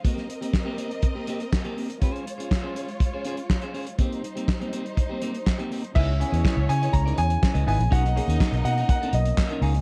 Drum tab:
CC |----------------|----------------|----------------|x---------------|
HH |x-xx--xxx-xx-xox|xxxx--xxx-xx-xox|xxxx-xxxx-xx-xox|--xx--xxxxxx-xox|
CP |----x-------x---|----x-------x---|----x-------x---|----x-------x---|
SD |-o--o-------o---|----o-------o---|----o-------o---|----o-------o---|
BD |o---o---o---o---|o---o---o---o---|o---o---o---o---|o---o---o---o---|

CC |----------------|
HH |xxxx-xxxxxxx-xox|
CP |----x-------x---|
SD |-o--o-------o---|
BD |o---o---o---o---|